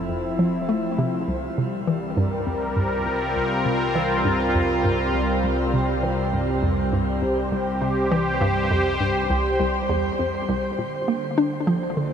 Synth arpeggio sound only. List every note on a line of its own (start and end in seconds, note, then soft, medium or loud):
0.09 0.30 F2 medium
0.39 0.51 F3 medium
0.69 0.97 A3 loud
0.98 1.27 C3 loud
1.28 1.49 C2 medium
1.58 1.70 C3 medium
1.87 2.16 E3 loud
2.17 2.45 G2 loud
2.47 2.68 F2 medium
2.77 2.89 G2 medium
3.06 3.34 C2 medium
3.36 3.57 C2 medium
3.66 3.78 C3 medium
3.95 4.24 E3 loud
4.25 4.53 G2 loud
4.55 4.75 F2 medium
4.84 4.97 G2 medium
5.14 5.42 C2 medium
5.44 5.65 C2 medium
5.74 5.86 C3 medium
6.03 6.32 E3 loud
6.33 6.61 G2 medium
6.63 6.83 F2 medium
6.93 7.05 G2 medium
7.22 7.50 C2 medium
7.52 7.73 C2 medium
7.82 7.94 C3 medium
8.12 8.40 E3 loud
8.41 8.69 G2 loud
8.71 8.91 F2 medium
9.01 9.13 G2 medium
9.30 9.58 C2 medium
9.60 9.80 C2 medium
9.89 10.10 E2 loud
10.19 10.40 F2 medium
10.49 10.69 C2 loud
10.78 10.99 A#2 medium
11.08 11.20 A#3 medium
11.38 11.66 D4 loud
11.67 11.96 F3 loud
11.97 12.13 D3 medium